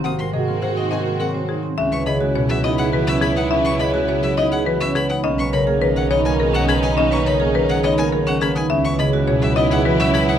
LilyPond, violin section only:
\new Staff \with { instrumentName = "Violin section" } { \time 3/4 \key aes \major \tempo 4 = 104 <c' ges'>2~ <c' ges'>8. r16 | \key cis \dorian <b e'>2.~ | <b e'>2~ <b e'>8. r16 | <cis' dis'>2.~ |
<cis' dis'>2~ <cis' dis'>8. r16 | <b e'>2. | }